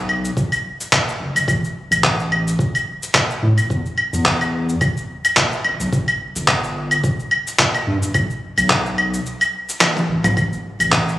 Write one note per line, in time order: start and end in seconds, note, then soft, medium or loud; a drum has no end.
0.00 0.31 B1 medium
0.09 claves medium
0.25 shaker medium
0.37 kick loud
0.37 shaker medium
0.52 claves medium
0.52 shaker soft
0.81 shaker medium
0.92 kick loud
0.92 clap loud
0.92 claves medium
0.92 shaker medium
1.09 shaker soft
1.20 1.31 F#1 medium
1.35 1.44 F#1 loud
1.35 claves medium
1.35 shaker medium
1.48 1.59 A1 loud
1.48 kick loud
1.48 claves medium
1.48 shaker medium
1.64 shaker soft
1.91 2.53 A1 loud
1.91 claves medium
1.91 shaker medium
2.03 kick loud
2.03 clap loud
2.03 shaker medium
2.20 shaker soft
2.32 claves medium
2.47 shaker medium
2.59 kick loud
2.59 shaker medium
2.75 claves medium
2.75 shaker soft
3.03 shaker medium
3.15 kick loud
3.15 clap medium
3.15 claves medium
3.15 shaker medium
3.30 shaker soft
3.43 3.53 A2 medium
3.58 3.66 E1 loud
3.58 claves medium
3.58 shaker medium
3.70 3.81 E2 loud
3.70 kick medium
3.70 shaker medium
3.86 shaker soft
3.98 claves medium
4.13 4.75 E2 loud
4.13 shaker medium
4.26 kick loud
4.26 clap loud
4.26 shaker medium
4.41 claves medium
4.41 shaker soft
4.69 shaker medium
4.81 kick loud
4.81 claves medium
4.81 shaker medium
4.97 shaker soft
5.25 claves medium
5.25 shaker medium
5.37 kick loud
5.37 clap loud
5.37 shaker medium
5.52 shaker soft
5.64 5.75 E1 medium
5.64 claves medium
5.80 5.89 B1 medium
5.80 shaker medium
5.93 6.03 G1 loud
5.93 kick loud
5.93 shaker medium
6.08 claves medium
6.08 shaker soft
6.36 6.98 G1 loud
6.36 shaker medium
6.48 kick loud
6.48 clap loud
6.48 claves medium
6.48 shaker medium
6.64 shaker soft
6.91 claves medium
6.91 shaker medium
7.04 kick loud
7.04 shaker medium
7.20 shaker soft
7.31 claves medium
7.47 shaker medium
7.59 kick medium
7.59 clap loud
7.59 shaker medium
7.74 claves medium
7.74 shaker soft
7.87 7.98 G2 medium
8.03 8.11 D1 loud
8.03 shaker medium
8.14 8.25 B1 loud
8.14 kick medium
8.14 claves medium
8.14 shaker medium
8.30 shaker soft
8.58 9.20 B1 loud
8.58 claves medium
8.58 shaker medium
8.70 kick loud
8.70 clap loud
8.70 shaker medium
8.86 shaker soft
8.98 claves medium
9.14 shaker medium
9.26 shaker medium
9.41 claves medium
9.41 shaker soft
9.69 shaker medium
9.81 clap loud
9.81 high tom medium
9.81 claves medium
9.81 shaker medium
9.97 high tom medium
9.97 shaker soft
10.09 10.20 A1 medium
10.24 10.33 B1 loud
10.24 mid tom medium
10.24 claves medium
10.24 shaker medium
10.37 10.48 A1 loud
10.37 kick loud
10.37 claves medium
10.37 shaker medium
10.53 shaker soft
10.80 11.19 A1 loud
10.80 claves medium
10.80 shaker medium
10.92 kick loud
10.92 clap loud
10.92 shaker medium
11.08 shaker soft